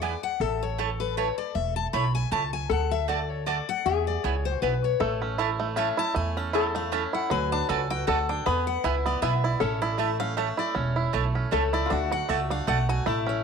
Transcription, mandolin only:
0.02 0.12 B3 medium
0.02 0.12 E4 medium
0.02 0.13 B4 medium
0.02 0.13 G#5 medium
0.78 0.89 A3 medium
0.78 0.89 E4 medium
0.78 0.89 C#5 loud
0.78 0.89 A5 medium
1.17 1.27 A3 medium
1.17 1.28 E4 medium
1.17 1.28 C#5 medium
1.17 1.28 A5 loud
1.93 2.04 A3 medium
1.93 2.04 E4 loud
1.93 2.04 C#5 loud
1.93 2.04 A5 loud
2.31 2.42 A3 medium
2.31 2.42 E4 loud
2.31 2.43 C#5 loud
2.31 2.43 A5 loud
3.08 3.19 A3 medium
3.08 3.19 F#4 medium
3.08 3.19 D5 loud
3.08 3.19 A5 loud
3.46 3.57 A3 medium
3.46 3.57 F#4 loud
3.46 3.57 D5 medium
3.46 3.58 A5 loud
4.24 4.34 B3 medium
4.24 4.34 E4 loud
4.24 4.35 B4 loud
4.24 4.35 G#5 loud
4.62 4.73 B3 medium
4.62 4.73 E4 medium
4.62 4.73 B4 medium
4.62 4.73 G#5 medium
5.39 5.49 A3 medium
5.39 5.49 E4 loud
5.39 5.49 C#5 loud
5.39 5.49 A5 loud
5.77 5.88 A3 medium
5.77 5.88 E4 loud
5.77 5.88 C#5 loud
5.77 5.88 A5 loud
6.53 6.64 A3 medium
6.53 6.64 E4 medium
6.53 6.64 C#5 loud
6.53 6.65 A5 loud
6.92 7.02 A3 medium
6.92 7.03 E4 loud
6.92 7.03 C#5 loud
6.92 7.03 A5 loud
7.69 7.79 A3 medium
7.69 7.79 F#4 loud
7.69 7.80 D5 loud
7.69 7.80 A5 medium
8.07 8.17 A3 medium
8.07 8.18 F#4 medium
8.07 8.18 D5 loud
8.07 8.18 A5 loud
8.84 8.94 B3 medium
8.84 8.94 E4 loud
8.84 8.95 B4 medium
8.84 8.95 G#5 loud
9.22 9.32 B3 medium
9.22 9.32 E4 medium
9.22 9.33 B4 medium
9.22 9.33 G#5 loud
9.98 10.09 A3 medium
9.98 10.09 E4 medium
9.98 10.09 C#5 medium
9.98 10.09 A5 loud
10.37 10.47 A3 medium
10.37 10.48 E4 medium
10.37 10.48 C#5 medium
10.37 10.48 A5 loud
11.13 11.24 A3 medium
11.13 11.24 E4 medium
11.13 11.24 C#5 medium
11.13 11.24 A5 loud
11.51 11.62 A3 medium
11.51 11.62 E4 loud
11.51 11.63 C#5 loud
11.51 11.63 A5 loud
12.29 12.39 A3 medium
12.29 12.39 F#4 loud
12.29 12.39 D5 loud
12.29 12.39 A5 loud
12.67 12.77 A3 medium
12.67 12.78 F#4 medium
12.67 12.78 D5 loud
12.67 12.78 A5 loud

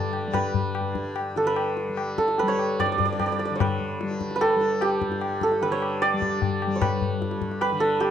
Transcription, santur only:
0.00 1.37 A4 medium
0.00 0.34 B4 medium
0.00 1.98 D5 loud
0.00 0.26 E5 loud
0.34 1.46 B4 medium
1.37 2.18 A4 medium
1.47 2.39 B4 medium
2.18 4.41 A4 medium
2.39 3.60 B4 loud
2.48 2.86 C#5 loud
2.80 2.85 D5 loud
2.86 2.92 D5 medium
2.92 2.98 D5 medium
2.98 3.05 D5 medium
3.05 3.12 D5 medium
3.13 3.19 D5 medium
3.19 3.26 D5 medium
3.26 3.32 D5 medium
3.32 3.39 D5 medium
3.39 3.45 D5 medium
3.45 3.61 D5 medium
3.55 5.71 C#5 medium
3.61 4.35 B4 medium
4.36 5.62 B4 medium
4.41 5.43 A4 loud
4.82 7.96 G4 loud
5.43 7.80 A4 medium
5.62 6.81 B4 medium
5.72 6.08 C#5 loud
6.02 6.82 D5 loud
6.76 8.11 C#5 medium
6.81 7.61 B4 loud
7.62 8.11 B4 loud
7.80 8.11 A4 loud
8.00 8.11 G4 medium

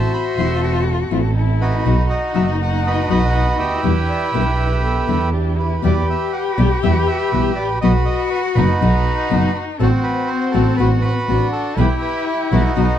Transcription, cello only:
0.00 1.36 F#4 medium
1.37 1.86 E4 medium
1.85 3.83 D#4 medium
3.84 4.79 E4 medium
4.83 5.34 B3 medium
5.33 5.59 D4 medium
5.57 5.81 E4 medium
5.81 7.83 G4 loud
7.82 8.79 F#4 loud
8.80 9.81 D#4 medium
9.80 11.28 C4 medium
11.29 11.78 D4 medium
11.77 12.76 E4 medium
12.77 12.99 D#4 medium

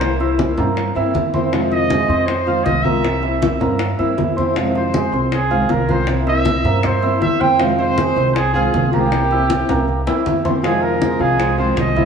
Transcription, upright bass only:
0.00 0.52 C2 medium
0.57 0.93 G2 medium
0.95 1.13 G2 medium
1.14 2.03 F2 medium
2.08 2.62 F2 medium
2.65 3.55 C2 medium
3.60 3.96 G2 medium
3.98 4.16 G2 medium
4.17 5.07 F2 medium
5.12 5.65 C2 medium
5.69 6.58 C2 medium
6.63 7.17 G2 medium
7.21 8.10 F2 medium
8.16 8.69 C2 medium
8.74 9.63 C2 medium
9.69 10.04 C2 medium
10.06 10.24 E2 medium
10.25 11.14 F2 medium
11.20 11.73 C2 medium
11.76 12.05 C2 medium

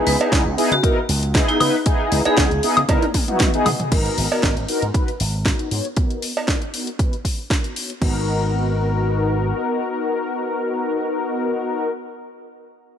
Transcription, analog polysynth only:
0.00 0.16 B3 medium
0.00 0.17 D#4 medium
0.00 0.17 E4 medium
0.00 0.17 G#4 medium
0.19 0.44 B3 medium
0.19 0.44 D#4 medium
0.19 0.44 E4 medium
0.19 0.44 G#4 loud
0.57 0.73 B3 loud
0.57 0.73 D#4 medium
0.57 0.74 E4 loud
0.57 0.74 G#4 loud
0.82 0.99 B3 medium
0.82 0.99 D#4 medium
0.82 0.99 E4 medium
0.82 0.99 A#4 loud
1.34 1.57 B3 medium
1.34 1.58 D#4 medium
1.34 1.58 E4 medium
1.34 1.58 G#4 loud
1.59 1.76 B3 medium
1.59 1.76 D#4 medium
1.59 1.76 E4 medium
1.59 1.76 B4 medium
1.85 2.22 B3 medium
1.85 2.22 D#4 medium
1.85 2.22 E4 medium
1.85 2.22 G#4 medium
2.25 2.49 B3 medium
2.25 2.50 D#4 medium
2.25 2.50 E4 medium
2.25 2.50 G#4 loud
2.63 2.79 B3 loud
2.63 2.79 D#4 medium
2.63 2.79 E4 loud
2.63 2.79 G#4 loud
2.88 3.04 B3 medium
2.88 3.05 D#4 medium
2.88 3.05 E4 medium
2.88 3.05 A#4 medium
3.28 3.50 B3 loud
3.28 3.50 D#4 medium
3.28 3.51 E4 loud
3.28 3.51 F#4 loud
3.54 3.68 B3 loud
3.54 3.68 D#4 medium
3.54 3.69 E4 medium
3.54 3.69 G#4 loud
3.91 4.27 B3 medium
3.91 4.28 D#4 medium
3.91 4.28 F#4 medium
3.91 4.28 A#4 medium
4.31 4.55 B3 medium
4.31 4.55 D#4 medium
4.31 4.55 F#4 medium
4.31 4.55 A#4 medium
4.68 4.84 B3 loud
4.68 4.84 D#4 medium
4.68 4.84 F#4 medium
4.68 4.85 A#4 loud
4.94 5.10 B3 medium
4.94 5.10 D#4 medium
4.94 5.10 F#4 medium
4.94 5.10 B4 medium
5.45 5.68 B3 medium
5.45 5.68 D#4 medium
5.45 5.68 F#4 medium
5.45 5.68 A#4 medium
5.71 5.87 B3 medium
5.71 5.87 D#4 medium
5.71 5.87 F#4 medium
5.71 5.87 C#5 medium
5.96 6.32 B3 medium
5.96 6.32 D#4 medium
5.96 6.33 F#4 medium
5.96 6.33 A#4 medium
6.35 6.59 B3 medium
6.35 6.60 D#4 medium
6.35 6.60 F#4 medium
6.35 6.60 A#4 loud
6.73 6.89 B3 loud
6.73 6.89 D#4 medium
6.73 6.89 F#4 medium
6.73 6.90 A#4 loud
6.99 7.15 B3 medium
6.99 7.15 D#4 medium
6.99 7.15 F#4 medium
6.99 7.15 B4 medium
7.50 7.73 B3 medium
7.50 7.73 D#4 medium
7.50 7.73 F#4 medium
7.50 7.73 A#4 medium
7.76 7.92 B3 medium
7.76 7.92 D#4 medium
7.76 7.92 F#4 medium
7.76 7.92 C#5 medium
8.00 11.87 B3 medium
8.00 11.88 D#4 medium
8.00 11.89 F#4 medium
8.00 11.90 A#4 medium

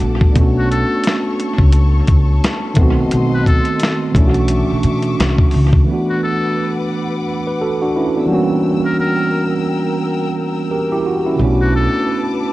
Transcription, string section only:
0.00 5.83 A4 medium
0.00 0.33 F#5 medium
0.00 0.33 A5 medium
0.00 0.33 D6 medium
0.35 2.74 C#5 medium
0.35 2.75 C#6 medium
2.77 4.13 D#5 medium
2.77 4.13 C6 medium
4.16 5.86 E5 medium
4.16 5.86 C#6 medium
4.16 5.86 D6 medium
5.86 8.26 B4 medium
5.86 8.26 F#5 medium
5.86 8.26 D6 medium
8.28 11.36 A#4 medium
8.28 11.36 G5 medium
8.28 11.36 E6 medium
11.39 12.53 B4 medium
11.39 12.53 A5 medium
11.39 12.53 D6 medium

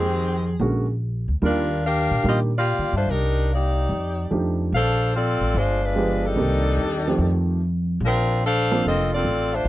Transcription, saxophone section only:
0.00 0.61 D#3 medium
0.00 0.61 C4 medium
0.00 0.61 G4 medium
0.00 0.89 G#4 medium
1.44 1.82 G3 medium
1.44 1.82 D4 medium
1.44 1.82 F4 medium
1.44 1.82 A#4 medium
1.86 2.26 D4 medium
1.86 2.26 G4 medium
1.86 2.26 A#4 medium
1.86 2.26 F5 loud
2.28 2.40 A#3 medium
2.28 2.39 F4 medium
2.28 2.40 G4 medium
2.28 2.40 D#5 medium
2.57 2.94 A#3 medium
2.57 2.94 F4 medium
2.57 2.93 G4 medium
2.57 2.93 D5 medium
2.96 3.08 A3 medium
2.96 3.08 D4 medium
2.96 3.08 F4 medium
2.96 3.08 C5 medium
3.10 3.50 G3 medium
3.10 3.50 D4 medium
3.10 3.50 D#4 medium
3.10 3.50 A#4 medium
3.53 3.89 A#3 medium
3.53 4.30 D#4 medium
3.53 4.30 G4 medium
3.53 4.30 D5 medium
4.74 5.12 D4 medium
4.74 5.12 A4 medium
4.74 5.12 C5 medium
4.74 5.12 F5 loud
5.16 5.56 C4 medium
5.16 5.56 F4 medium
5.16 5.56 A4 medium
5.16 5.56 D5 medium
5.57 5.83 G#3 medium
5.57 5.84 D4 medium
5.57 5.83 F4 medium
5.57 5.84 C5 medium
5.84 6.24 G#3 medium
5.84 6.25 D4 medium
5.84 6.25 F4 medium
5.84 6.25 B4 medium
6.26 7.48 G3 medium
6.26 7.49 D4 medium
6.26 7.49 D#4 medium
6.26 7.48 A4 medium
8.05 8.42 F3 medium
8.05 8.42 C4 medium
8.05 8.42 D4 medium
8.05 8.42 A#4 medium
8.46 8.83 D4 medium
8.46 8.83 A4 medium
8.46 8.83 C5 medium
8.46 8.83 F5 loud
8.87 9.11 C4 medium
8.87 9.11 F4 medium
8.87 9.11 A4 medium
8.87 9.11 D#5 loud
9.15 9.55 C4 medium
9.15 9.53 F4 medium
9.15 9.54 A4 medium
9.15 9.54 D5 loud
9.54 9.67 A3 medium
9.54 9.67 D4 medium
9.54 9.67 F4 medium
9.54 9.67 C5 medium

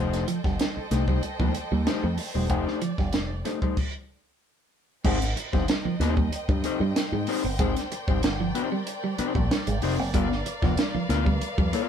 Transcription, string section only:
0.00 3.74 A4 medium
0.00 3.74 C5 medium
0.00 2.48 D#5 medium
0.00 3.74 G5 medium
2.50 3.76 D5 medium
5.05 11.89 A#4 medium
5.05 10.10 C5 medium
5.05 7.57 D#5 medium
5.05 10.10 G5 medium
7.59 11.89 D5 medium
10.15 11.89 B4 medium
10.15 11.89 F5 medium

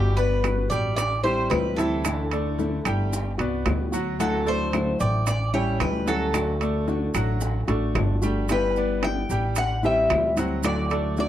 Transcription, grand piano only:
0.00 0.13 G3 medium
0.00 0.13 G4 medium
0.00 0.13 G5 medium
0.17 0.61 B3 medium
0.17 0.62 B4 medium
0.17 0.62 D5 medium
0.71 1.15 G3 medium
0.71 1.16 G5 medium
1.25 1.69 G3 medium
1.25 1.69 G4 medium
1.25 1.69 G5 medium
1.78 2.22 E3 medium
1.78 2.22 E4 medium
1.78 2.23 E5 medium
2.33 2.76 A3 medium
2.33 2.77 A4 medium
2.33 2.77 D5 medium
2.86 3.30 G3 medium
2.86 3.30 G4 medium
2.86 3.30 G5 medium
3.40 3.84 B3 medium
3.40 3.84 B4 medium
3.40 3.84 D5 medium
3.93 4.15 F#3 medium
3.93 4.15 F#4 medium
3.93 4.15 F#5 medium
4.20 4.42 F#3 medium
4.20 4.42 F#4 medium
4.20 4.42 F#5 medium
4.46 4.90 A3 medium
4.46 4.91 A4 medium
4.46 4.91 D5 medium
5.01 5.45 G5 medium
5.54 5.98 G3 medium
5.54 5.99 G4 medium
5.54 5.99 G5 medium
6.08 6.52 F#3 medium
6.08 6.52 F#4 medium
6.08 6.52 F#5 medium
6.61 7.05 A3 medium
6.61 7.06 A4 medium
6.61 7.06 D5 medium
7.15 7.59 F#3 medium
7.15 7.60 F#4 medium
7.15 7.60 F#5 medium
7.69 8.13 A3 medium
7.69 8.13 A4 medium
7.69 8.14 D5 medium
8.23 8.45 G3 medium
8.23 8.45 G4 medium
8.23 8.45 G5 medium
8.50 8.72 G3 medium
8.50 8.72 G4 medium
8.50 8.72 G5 medium
8.77 9.21 B3 medium
8.77 9.21 B4 medium
8.77 9.21 D5 medium
9.31 9.75 G3 medium
9.31 9.75 G4 medium
9.31 9.75 G5 medium
9.84 10.28 G3 medium
9.84 10.29 G4 medium
9.84 10.29 G5 medium
10.38 10.82 F#3 medium
10.38 10.82 F#4 medium
10.38 10.82 F#5 medium
10.91 11.29 A3 medium
10.91 11.29 A4 medium
10.91 11.29 D5 medium

